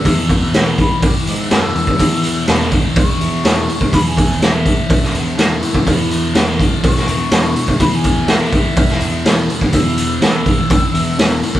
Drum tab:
HH |o-o-o-o-o-o-o-o-|o-o-o-o-o-o-o-o-|o-o-o-o-o-o-o-o-|o-o-o-o-o-o-o-o-|
SD |----o-------o---|----oo------o---|----o----o--o---|----oo---o--o---|
BD |o-o---o-o------o|o-----o-o------o|o-o---o-o------o|o-----o-o------o|

HH |o-o-o-o-o-o-o-o-|o-o-o-o-o-o-o-o-|
SD |----oo---o--o---|----o-------o---|
BD |o-o---o-o------o|o-----o-o------o|